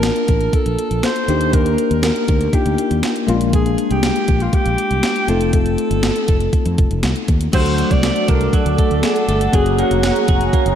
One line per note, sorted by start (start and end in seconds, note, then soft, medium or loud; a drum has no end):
0.00 1.24 A#3 medium
0.00 1.25 D4 medium
0.00 1.25 F4 medium
0.00 0.56 A#4 medium
0.00 1.25 A5 medium
0.00 snare loud
0.00 closed hi-hat loud
0.16 closed hi-hat soft
0.28 0.47 A1 medium
0.28 kick medium
0.28 closed hi-hat medium
0.41 closed hi-hat soft
0.53 1.05 A4 loud
0.53 kick medium
0.53 closed hi-hat medium
0.66 0.75 A#1 medium
0.66 closed hi-hat soft
0.79 closed hi-hat medium
0.91 1.00 A#1 medium
0.91 closed hi-hat soft
1.03 1.55 C5 loud
1.03 snare medium
1.03 closed hi-hat medium
1.16 closed hi-hat soft
1.27 1.75 D#2 medium
1.27 2.50 A#3 medium
1.27 2.51 D4 medium
1.27 2.51 D#4 medium
1.27 2.52 G4 medium
1.27 closed hi-hat medium
1.41 closed hi-hat medium
1.53 2.04 A#4 medium
1.53 kick medium
1.53 closed hi-hat medium
1.66 closed hi-hat soft
1.78 closed hi-hat medium
1.91 2.10 D#2 medium
1.91 closed hi-hat soft
2.03 2.56 A#4 medium
2.03 snare loud
2.03 closed hi-hat medium
2.16 closed hi-hat soft
2.28 2.47 D2 medium
2.28 kick medium
2.28 closed hi-hat medium
2.41 closed hi-hat soft
2.53 3.26 A#3 soft
2.53 3.28 D4 soft
2.53 3.28 D#4 soft
2.53 3.28 F4 medium
2.53 3.04 G4 medium
2.53 kick medium
2.53 closed hi-hat medium
2.66 2.75 D2 medium
2.66 closed hi-hat soft
2.78 closed hi-hat medium
2.91 3.00 D#2 medium
2.91 closed hi-hat soft
3.03 snare medium
3.03 closed hi-hat medium
3.16 closed hi-hat soft
3.27 3.75 A#1 medium
3.27 5.24 G#3 medium
3.27 5.24 A#3 medium
3.27 3.34 C#4 medium
3.27 5.25 F4 medium
3.27 closed hi-hat medium
3.34 5.27 D4 medium
3.41 closed hi-hat medium
3.53 3.94 G#4 medium
3.53 kick loud
3.53 closed hi-hat medium
3.66 closed hi-hat soft
3.78 closed hi-hat medium
3.91 4.10 C2 medium
3.91 4.44 G4 medium
3.91 closed hi-hat soft
4.03 snare loud
4.03 closed hi-hat loud
4.16 closed hi-hat soft
4.28 4.47 A#1 medium
4.28 kick medium
4.28 closed hi-hat medium
4.40 4.56 F4 medium
4.40 closed hi-hat soft
4.53 5.31 G4 loud
4.53 kick medium
4.53 closed hi-hat medium
4.66 4.75 A#1 medium
4.66 closed hi-hat soft
4.78 closed hi-hat medium
4.91 5.00 C2 medium
4.91 closed hi-hat soft
5.03 snare loud
5.03 closed hi-hat medium
5.16 closed hi-hat soft
5.27 5.75 F1 medium
5.27 7.24 A3 medium
5.27 7.24 C4 medium
5.27 7.25 D#4 medium
5.27 7.25 F4 medium
5.27 5.54 A4 medium
5.27 closed hi-hat medium
5.41 closed hi-hat medium
5.53 7.00 A4 loud
5.53 kick loud
5.53 closed hi-hat medium
5.66 closed hi-hat soft
5.78 closed hi-hat medium
5.91 6.09 G1 medium
5.91 closed hi-hat medium
6.03 snare loud
6.03 closed hi-hat medium
6.16 closed hi-hat soft
6.28 6.47 F1 medium
6.28 kick medium
6.28 closed hi-hat medium
6.40 closed hi-hat soft
6.53 kick medium
6.53 closed hi-hat medium
6.66 6.75 F2 medium
6.66 closed hi-hat soft
6.78 6.88 F1 medium
6.78 kick medium
6.78 closed hi-hat medium
6.91 7.00 F1 medium
6.91 closed hi-hat soft
7.03 7.13 C2 medium
7.03 snare medium
7.03 closed hi-hat medium
7.16 closed hi-hat soft
7.28 7.47 D#2 medium
7.28 kick medium
7.28 closed hi-hat medium
7.41 closed hi-hat medium
7.52 7.81 D2 medium
7.52 7.78 F#3 medium
7.52 9.49 A3 medium
7.52 9.49 D4 medium
7.52 9.50 F#4 medium
7.52 7.60 G4 soft
7.52 9.51 A4 medium
7.52 7.93 C5 loud
7.52 9.51 D5 medium
7.52 10.75 F#5 medium
7.52 9.51 D6 medium
7.52 kick loud
7.52 closed hi-hat medium
7.52 crash medium
7.61 9.53 A4 medium
7.66 closed hi-hat soft
7.78 8.53 F#3 medium
7.78 closed hi-hat medium
7.91 8.10 C2 medium
7.91 8.31 D5 loud
7.91 kick medium
7.91 closed hi-hat medium
8.03 8.77 A3 medium
8.03 snare loud
8.03 closed hi-hat medium
8.16 closed hi-hat soft
8.28 8.47 C2 medium
8.28 9.02 D4 medium
8.28 8.56 A#4 medium
8.28 kick medium
8.28 closed hi-hat medium
8.41 closed hi-hat soft
8.53 9.53 F#3 medium
8.53 9.04 A4 medium
8.53 kick medium
8.53 closed hi-hat medium
8.66 8.75 D2 medium
8.66 closed hi-hat medium
8.78 9.27 A3 medium
8.78 kick medium
8.78 closed hi-hat medium
8.91 9.00 D2 medium
8.91 closed hi-hat soft
9.03 9.58 D4 medium
9.03 9.51 A4 medium
9.03 snare loud
9.03 closed hi-hat medium
9.16 closed hi-hat soft
9.28 9.47 G1 medium
9.28 9.58 A3 medium
9.28 closed hi-hat medium
9.41 closed hi-hat medium
9.52 9.81 F#1 medium
9.52 10.75 F#3 medium
9.52 10.75 A#3 medium
9.52 10.75 C#4 medium
9.52 10.75 F#4 medium
9.52 10.75 G#4 medium
9.52 9.81 G#4 medium
9.52 10.75 C#5 medium
9.52 10.75 A#5 medium
9.52 kick loud
9.52 closed hi-hat medium
9.66 closed hi-hat soft
9.78 10.52 A#3 medium
9.78 10.04 F#4 medium
9.78 closed hi-hat medium
9.91 10.10 F1 medium
9.91 closed hi-hat medium
10.03 10.75 C#4 medium
10.03 10.70 F#4 medium
10.03 snare loud
10.03 closed hi-hat loud
10.16 closed hi-hat soft
10.28 10.47 F1 medium
10.28 10.75 G#4 medium
10.28 kick medium
10.28 closed hi-hat medium
10.41 closed hi-hat soft
10.53 10.75 A#3 medium
10.53 kick medium
10.53 closed hi-hat medium
10.66 10.75 F#1 medium
10.66 10.75 G#4 medium
10.66 closed hi-hat medium